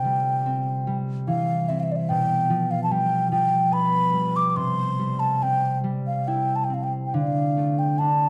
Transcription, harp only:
0.00 2.14 C3 medium
0.00 1.72 A3 soft
0.00 1.33 F4 soft
0.00 1.00 A4 soft
0.05 0.86 G3 soft
0.46 1.69 C4 soft
0.87 2.14 G3 medium
1.27 2.14 E3 soft
1.69 2.16 C4 soft
2.10 4.61 B2 medium
2.50 3.31 F3 soft
2.91 4.12 G3 medium
3.32 4.61 F3 medium
3.72 4.62 B3 medium
4.13 4.61 G3 medium
4.56 7.18 C3 medium
4.99 5.83 G3 soft
5.42 6.70 C4 soft
5.84 7.18 G3 soft
6.28 8.29 E4 soft
6.70 8.29 C4 soft
7.14 8.29 D3 medium
7.57 8.29 A3 soft
8.00 8.29 D4 soft

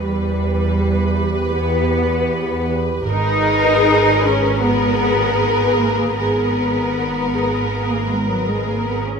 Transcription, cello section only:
0.03 1.57 G3 soft
1.57 2.70 B3 medium
3.12 4.23 D#4 medium
4.26 4.65 C#4 medium
4.64 5.80 B3 medium
5.80 6.18 A#3 soft
6.19 7.88 B3 soft
7.92 8.11 A#3 soft
8.11 8.30 G#3 soft
8.30 8.50 F#3 soft
8.48 8.68 G#3 soft
8.69 8.88 A#3 soft
8.87 9.07 B3 soft
9.06 9.20 C#4 soft

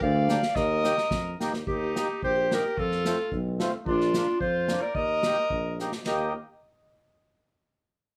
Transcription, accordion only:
0.28 0.40 A#3 medium
0.28 0.41 D4 medium
0.28 0.41 G4 medium
0.84 0.96 A#3 medium
0.84 0.96 D#4 medium
0.84 0.96 G4 medium
1.40 1.52 A#3 medium
1.40 1.52 D#4 medium
1.40 1.53 G4 medium
1.96 2.08 A#3 medium
1.96 2.08 D#4 medium
1.96 2.08 G4 medium
2.52 2.63 A#3 medium
2.52 2.64 D#4 soft
2.52 2.64 G4 medium
3.05 3.17 A3 medium
3.05 3.17 C4 medium
3.05 3.18 F4 medium
3.59 3.72 A3 medium
3.59 3.72 C4 medium
3.59 3.72 F4 medium
4.16 4.27 A#3 medium
4.16 4.27 D4 medium
4.16 4.27 F4 medium
4.68 4.80 A#3 medium
4.68 4.81 D4 medium
4.68 4.81 F4 medium
5.25 5.36 A#3 medium
5.25 5.36 D#4 medium
5.25 5.37 G4 medium
5.80 5.91 A#3 medium
5.80 5.92 D#4 medium
5.80 5.92 G4 medium
6.06 6.33 A#3 medium
6.06 6.33 D#4 medium
6.06 6.33 G4 medium

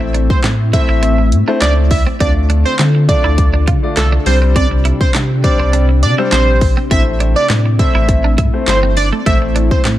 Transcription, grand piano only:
0.00 0.36 A3 medium
0.00 0.36 C4 medium
0.00 0.36 E4 medium
0.00 0.36 C5 medium
0.73 1.16 A3 medium
0.73 1.16 C4 medium
0.73 1.16 E4 medium
0.73 1.16 C5 loud
1.48 1.89 A3 medium
1.48 1.89 C4 medium
1.48 1.89 E4 medium
1.48 1.89 C5 loud
2.20 2.71 A3 medium
2.20 2.71 D4 medium
2.20 2.71 F4 medium
2.20 2.71 D5 medium
3.09 3.51 A3 medium
3.09 3.51 D4 medium
3.09 3.51 F4 medium
3.09 3.51 D5 medium
3.83 4.24 A3 medium
3.83 4.24 D4 medium
3.83 4.24 F4 medium
3.83 4.24 D5 medium
4.26 5.21 G3 medium
4.26 5.21 C4 medium
4.26 5.21 D4 medium
4.26 5.21 C5 medium
5.44 5.86 G3 medium
5.44 5.87 C4 medium
5.44 5.87 D4 medium
5.44 5.87 C5 medium
6.18 6.59 G3 medium
6.18 6.59 C4 medium
6.18 6.60 D4 medium
6.18 6.60 C5 loud
6.91 7.42 A3 medium
6.91 7.42 C4 medium
6.91 7.42 E4 medium
6.91 7.42 C5 medium
7.79 8.22 A3 medium
7.79 8.22 C4 medium
7.79 8.22 E4 medium
7.79 8.22 C5 medium
8.53 8.95 A3 medium
8.53 8.95 C4 medium
8.53 8.95 E4 medium
8.53 8.95 C5 medium
9.26 9.77 A3 medium
9.26 9.77 C4 medium
9.26 9.77 E4 medium
9.26 9.77 C5 medium

